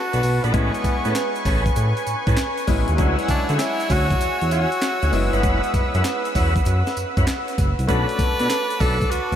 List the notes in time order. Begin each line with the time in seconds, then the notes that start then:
Already playing: A3 D4 F#4 B4 C#5 A5
0.13 B1 D4 F#4 A4 B4, closed hi-hat, shaker
0.23 B1, open hi-hat, tambourine, shaker
0.44 A#1 B3 D4 F#4 A4 B4, closed hi-hat, shaker
0.52 A1 G#3 B3 C#4 E4 G#4 A4 B4 G#5 C#6, kick, closed hi-hat, shaker
0.74 closed hi-hat, shaker
0.84 A2, kick, closed hi-hat, tambourine, shaker
1.05 A2 C#4 G#4 A4 B4, closed hi-hat, shaker
1.15 snare, clap, closed hi-hat, tambourine, shaker
1.35 closed hi-hat, shaker
1.45 A1 C#4 G#4 A4 B4, kick, open hi-hat, tambourine, shaker
1.66 kick, closed hi-hat, shaker
1.76 A2, closed hi-hat, tambourine, shaker
1.97 closed hi-hat, shaker
2.07 A2, closed hi-hat, tambourine, shaker
2.27 A2 C#4 G#4 A4 B4, kick, closed hi-hat, shaker
2.37 snare, clap, closed hi-hat, tambourine, shaker
2.58 closed hi-hat, shaker
2.67 A1 G#3 B3 C#4 E4, kick, open hi-hat, tambourine, shaker
2.88 D#2, closed hi-hat, shaker
2.97 D2 F#3 G#3 C#4 D4 E4 F#4 G#4 C#5 F#5 E6, kick, closed hi-hat, shaker
3.06 E4
3.19 closed hi-hat, shaker
3.28 D3 D4, kick, closed hi-hat, tambourine, shaker
3.49 D3 C#4 E4 F#4 G#4, closed hi-hat, shaker
3.56 D#4 E4, snare, clap, closed hi-hat, tambourine, shaker
3.80 closed hi-hat, shaker
3.90 D2 C#4 E4 F#4 G#4, kick, open hi-hat, tambourine, shaker
4.11 kick, closed hi-hat, shaker
4.21 E2, closed hi-hat, tambourine, shaker
4.41 E2, closed hi-hat, shaker
4.51 C#4 E4 F#4 G#4, closed hi-hat, tambourine, shaker
4.72 closed hi-hat, shaker
4.82 snare, clap, closed hi-hat, tambourine, shaker
5.02 D2 C#4 E4 F#4 G#4, closed hi-hat, shaker
5.12 F#1 G#3 B3 C#4 E4 B4, open hi-hat, tambourine, shaker
5.33 G1 B3 C#4 E4 F#4 B4, closed hi-hat, shaker
5.43 F#1 C#4 E4 F#4 B4, kick, closed hi-hat, shaker
5.63 closed hi-hat, shaker
5.74 F#2, kick, closed hi-hat, tambourine, shaker
5.94 F#2 C#4 E4 F#4 B4, closed hi-hat, shaker
6.04 snare, clap, closed hi-hat, tambourine, shaker
6.25 closed hi-hat, shaker
6.35 E2 C#4 E4 F#4 B4, kick, open hi-hat, tambourine, shaker
6.56 kick, closed hi-hat, shaker
6.65 F#2, closed hi-hat, tambourine, shaker
6.87 snare, closed hi-hat, shaker
6.96 F#2, closed hi-hat, tambourine, shaker
7.17 F#2 C#4 E4 F#4 B4, kick, closed hi-hat, shaker
7.27 snare, clap, closed hi-hat, tambourine, shaker
7.48 closed hi-hat, shaker
7.58 F#1, kick, closed hi-hat, tambourine, shaker
7.79 C2, closed hi-hat, shaker
7.87 B1 A3 C#4 D4 F#4 A4 B4 A5 D6, kick, closed hi-hat, shaker
8.09 closed hi-hat, shaker
8.19 B2, kick, closed hi-hat, tambourine, shaker
8.39 B2 D4 F#4 A4 B4, closed hi-hat, shaker
8.50 snare, clap, closed hi-hat, tambourine, shaker
8.70 closed hi-hat, shaker
8.80 B1 D4 F#4 A4 B4, kick, open hi-hat, tambourine, shaker
9.01 kick, closed hi-hat, shaker
9.11 D2 F#4, closed hi-hat, tambourine, shaker
9.32 D2, closed hi-hat